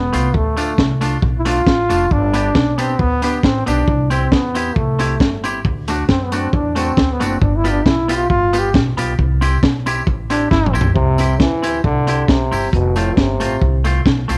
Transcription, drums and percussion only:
0.13 closed hi-hat medium
0.13 tambourine medium
0.34 kick loud
0.57 closed hi-hat medium
0.57 tambourine medium
0.78 kick loud
0.78 snare loud
1.01 closed hi-hat medium
1.01 tambourine medium
1.22 kick loud
1.45 closed hi-hat medium
1.45 tambourine medium
1.67 kick loud
1.67 snare loud
1.90 closed hi-hat medium
1.90 tambourine medium
2.11 kick loud
2.34 closed hi-hat medium
2.34 tambourine medium
2.55 kick loud
2.55 snare loud
2.78 closed hi-hat medium
2.78 tambourine medium
2.99 kick loud
3.22 closed hi-hat medium
3.22 tambourine medium
3.43 kick loud
3.43 snare loud
3.67 closed hi-hat medium
3.67 tambourine loud
3.88 kick loud
4.11 closed hi-hat medium
4.11 tambourine medium
4.32 kick loud
4.32 snare loud
4.55 closed hi-hat medium
4.55 tambourine medium
4.76 kick loud
4.99 closed hi-hat medium
4.99 tambourine medium
5.20 kick loud
5.20 snare loud
5.44 closed hi-hat medium
5.44 tambourine medium
5.65 kick loud
5.88 closed hi-hat medium
5.88 tambourine medium
6.09 kick loud
6.09 snare loud
6.32 closed hi-hat medium
6.32 tambourine medium
6.53 kick loud
6.76 closed hi-hat medium
6.76 tambourine medium
6.97 kick loud
6.97 snare loud
7.21 closed hi-hat medium
7.21 tambourine loud
7.42 kick loud
7.65 closed hi-hat medium
7.65 tambourine medium
7.86 kick loud
7.86 snare loud
8.09 closed hi-hat loud
8.09 tambourine medium
8.30 kick loud
8.53 closed hi-hat medium
8.53 tambourine medium
8.74 kick loud
8.74 snare loud
8.98 closed hi-hat medium
8.98 tambourine medium
9.19 kick medium
9.42 closed hi-hat medium
9.42 tambourine medium
9.63 kick loud
9.63 snare loud
9.86 closed hi-hat medium
9.86 tambourine medium
10.07 kick loud
10.30 closed hi-hat medium
10.30 tambourine medium
10.51 kick loud
10.51 snare medium
10.66 mid tom medium
10.75 tambourine medium
10.81 floor tom loud
10.96 kick loud
11.18 closed hi-hat medium
11.18 tambourine medium
11.40 kick loud
11.40 snare loud
11.63 closed hi-hat medium
11.63 tambourine medium
11.84 kick loud
12.07 closed hi-hat medium
12.07 tambourine medium
12.28 kick loud
12.28 snare loud
12.52 open hi-hat soft
12.52 tambourine medium
12.73 kick loud
12.73 hi-hat pedal medium
12.96 closed hi-hat medium
12.96 tambourine medium
13.17 kick loud
13.17 snare loud
13.40 closed hi-hat medium
13.40 tambourine medium
13.62 kick loud
13.85 closed hi-hat medium
13.85 tambourine medium
14.06 kick loud
14.06 snare loud
14.29 closed hi-hat medium
14.29 tambourine medium

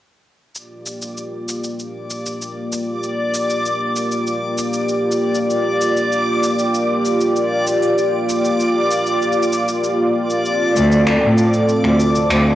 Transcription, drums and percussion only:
0.55 cabasa soft
0.86 cabasa medium
1.02 cabasa soft
1.18 cabasa soft
1.49 cabasa medium
1.64 cabasa soft
1.80 cabasa soft
2.11 cabasa medium
2.26 cabasa soft
2.42 cabasa soft
2.73 cabasa medium
3.03 cabasa soft
3.34 cabasa medium
3.50 cabasa soft
3.66 cabasa soft
3.96 cabasa medium
4.12 cabasa soft
4.27 cabasa soft
4.58 cabasa medium
4.73 cabasa soft
4.89 cabasa soft
5.12 cabasa medium
5.35 cabasa soft
5.50 cabasa soft
5.81 cabasa medium
5.97 cabasa soft
6.12 cabasa soft
6.43 cabasa medium
6.59 cabasa soft
6.74 cabasa soft
7.05 cabasa medium
7.21 cabasa soft
7.36 cabasa soft
7.67 cabasa medium
7.83 cabasa soft
7.98 cabasa soft
8.29 cabasa medium
8.45 cabasa soft
8.60 cabasa soft
8.91 cabasa medium
9.06 cabasa soft
9.22 cabasa soft
9.32 cabasa soft
9.43 cabasa soft
9.53 cabasa medium
9.68 cabasa soft
9.84 cabasa soft
10.30 cabasa soft
10.46 cabasa soft
10.76 cabasa medium
10.92 cabasa soft
11.07 finger snap medium
11.07 cabasa soft
11.38 cabasa medium
11.54 cabasa soft
11.69 cabasa soft
11.84 finger snap soft
12.00 cabasa medium
12.16 cabasa soft
12.30 finger snap medium
12.30 cabasa soft

